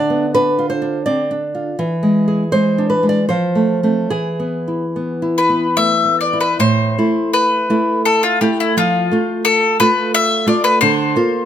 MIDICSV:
0, 0, Header, 1, 3, 480
1, 0, Start_track
1, 0, Key_signature, 0, "minor"
1, 0, Tempo, 715990
1, 1200, Time_signature, 3, 2, 24, 8
1, 1200, Tempo, 749064
1, 2160, Tempo, 825309
1, 4080, Tempo, 723764
1, 5520, Tempo, 682594
1, 7413, End_track
2, 0, Start_track
2, 0, Title_t, "Mandolin"
2, 0, Program_c, 0, 25
2, 3376, Note_on_c, 0, 71, 76
2, 3592, Note_off_c, 0, 71, 0
2, 3602, Note_on_c, 0, 76, 87
2, 3826, Note_off_c, 0, 76, 0
2, 3857, Note_on_c, 0, 74, 68
2, 3962, Note_off_c, 0, 74, 0
2, 3973, Note_on_c, 0, 71, 72
2, 4075, Note_off_c, 0, 71, 0
2, 4086, Note_on_c, 0, 72, 92
2, 4546, Note_off_c, 0, 72, 0
2, 4574, Note_on_c, 0, 71, 82
2, 5021, Note_off_c, 0, 71, 0
2, 5051, Note_on_c, 0, 69, 92
2, 5158, Note_off_c, 0, 69, 0
2, 5168, Note_on_c, 0, 65, 82
2, 5276, Note_off_c, 0, 65, 0
2, 5288, Note_on_c, 0, 67, 75
2, 5395, Note_off_c, 0, 67, 0
2, 5415, Note_on_c, 0, 64, 80
2, 5518, Note_off_c, 0, 64, 0
2, 5531, Note_on_c, 0, 65, 89
2, 5982, Note_off_c, 0, 65, 0
2, 6003, Note_on_c, 0, 69, 102
2, 6225, Note_off_c, 0, 69, 0
2, 6249, Note_on_c, 0, 71, 112
2, 6468, Note_off_c, 0, 71, 0
2, 6493, Note_on_c, 0, 76, 119
2, 6708, Note_off_c, 0, 76, 0
2, 6726, Note_on_c, 0, 74, 82
2, 6833, Note_off_c, 0, 74, 0
2, 6842, Note_on_c, 0, 71, 100
2, 6951, Note_off_c, 0, 71, 0
2, 6959, Note_on_c, 0, 72, 114
2, 7413, Note_off_c, 0, 72, 0
2, 7413, End_track
3, 0, Start_track
3, 0, Title_t, "Nylon-string guitar"
3, 0, Program_c, 1, 24
3, 0, Note_on_c, 1, 50, 66
3, 0, Note_on_c, 1, 62, 48
3, 0, Note_on_c, 1, 74, 86
3, 67, Note_on_c, 1, 59, 48
3, 169, Note_off_c, 1, 62, 0
3, 218, Note_off_c, 1, 74, 0
3, 231, Note_on_c, 1, 71, 87
3, 236, Note_on_c, 1, 62, 56
3, 325, Note_off_c, 1, 59, 0
3, 393, Note_on_c, 1, 65, 55
3, 462, Note_off_c, 1, 71, 0
3, 467, Note_on_c, 1, 72, 82
3, 490, Note_off_c, 1, 62, 0
3, 548, Note_on_c, 1, 62, 49
3, 648, Note_off_c, 1, 65, 0
3, 700, Note_off_c, 1, 72, 0
3, 709, Note_on_c, 1, 74, 77
3, 716, Note_on_c, 1, 60, 47
3, 807, Note_off_c, 1, 62, 0
3, 876, Note_off_c, 1, 60, 0
3, 877, Note_on_c, 1, 62, 48
3, 1037, Note_on_c, 1, 65, 46
3, 1136, Note_off_c, 1, 62, 0
3, 1167, Note_off_c, 1, 50, 0
3, 1178, Note_off_c, 1, 74, 0
3, 1198, Note_on_c, 1, 52, 65
3, 1200, Note_off_c, 1, 65, 0
3, 1352, Note_on_c, 1, 56, 48
3, 1512, Note_on_c, 1, 68, 49
3, 1608, Note_off_c, 1, 56, 0
3, 1668, Note_on_c, 1, 72, 89
3, 1672, Note_on_c, 1, 56, 47
3, 1768, Note_off_c, 1, 68, 0
3, 1836, Note_on_c, 1, 62, 50
3, 1902, Note_off_c, 1, 72, 0
3, 1909, Note_on_c, 1, 71, 71
3, 1929, Note_off_c, 1, 56, 0
3, 1994, Note_on_c, 1, 56, 44
3, 2030, Note_off_c, 1, 71, 0
3, 2033, Note_on_c, 1, 74, 84
3, 2095, Note_off_c, 1, 62, 0
3, 2133, Note_off_c, 1, 52, 0
3, 2156, Note_off_c, 1, 74, 0
3, 2159, Note_off_c, 1, 56, 0
3, 2159, Note_on_c, 1, 72, 82
3, 2165, Note_on_c, 1, 53, 57
3, 2314, Note_on_c, 1, 57, 45
3, 2470, Note_off_c, 1, 57, 0
3, 2477, Note_on_c, 1, 57, 42
3, 2480, Note_on_c, 1, 60, 42
3, 2618, Note_off_c, 1, 72, 0
3, 2623, Note_off_c, 1, 57, 0
3, 2624, Note_off_c, 1, 60, 0
3, 2626, Note_off_c, 1, 53, 0
3, 2634, Note_on_c, 1, 68, 78
3, 2638, Note_on_c, 1, 52, 58
3, 2804, Note_on_c, 1, 59, 42
3, 2967, Note_on_c, 1, 64, 41
3, 3065, Note_off_c, 1, 59, 0
3, 3132, Note_on_c, 1, 59, 44
3, 3225, Note_off_c, 1, 64, 0
3, 3284, Note_on_c, 1, 64, 49
3, 3386, Note_off_c, 1, 59, 0
3, 3441, Note_on_c, 1, 59, 45
3, 3540, Note_off_c, 1, 64, 0
3, 3580, Note_off_c, 1, 68, 0
3, 3601, Note_on_c, 1, 57, 41
3, 3696, Note_off_c, 1, 59, 0
3, 3761, Note_off_c, 1, 57, 0
3, 3764, Note_on_c, 1, 59, 42
3, 3931, Note_on_c, 1, 64, 48
3, 4018, Note_off_c, 1, 59, 0
3, 4056, Note_off_c, 1, 52, 0
3, 4082, Note_off_c, 1, 64, 0
3, 4082, Note_on_c, 1, 45, 68
3, 4323, Note_off_c, 1, 45, 0
3, 4341, Note_on_c, 1, 57, 45
3, 4343, Note_on_c, 1, 64, 56
3, 4787, Note_off_c, 1, 57, 0
3, 4788, Note_off_c, 1, 64, 0
3, 4815, Note_on_c, 1, 57, 53
3, 4819, Note_on_c, 1, 64, 59
3, 5259, Note_off_c, 1, 57, 0
3, 5261, Note_off_c, 1, 64, 0
3, 5288, Note_on_c, 1, 57, 56
3, 5292, Note_on_c, 1, 64, 57
3, 5499, Note_off_c, 1, 57, 0
3, 5500, Note_off_c, 1, 64, 0
3, 5525, Note_on_c, 1, 53, 69
3, 5761, Note_off_c, 1, 53, 0
3, 5769, Note_on_c, 1, 57, 53
3, 5777, Note_on_c, 1, 65, 55
3, 6217, Note_off_c, 1, 57, 0
3, 6221, Note_off_c, 1, 65, 0
3, 6250, Note_on_c, 1, 57, 65
3, 6255, Note_on_c, 1, 65, 69
3, 6694, Note_off_c, 1, 57, 0
3, 6697, Note_off_c, 1, 65, 0
3, 6718, Note_on_c, 1, 57, 64
3, 6725, Note_on_c, 1, 65, 70
3, 6933, Note_off_c, 1, 57, 0
3, 6937, Note_off_c, 1, 65, 0
3, 6970, Note_on_c, 1, 50, 91
3, 7197, Note_off_c, 1, 50, 0
3, 7207, Note_on_c, 1, 58, 57
3, 7211, Note_on_c, 1, 65, 67
3, 7413, Note_off_c, 1, 58, 0
3, 7413, Note_off_c, 1, 65, 0
3, 7413, End_track
0, 0, End_of_file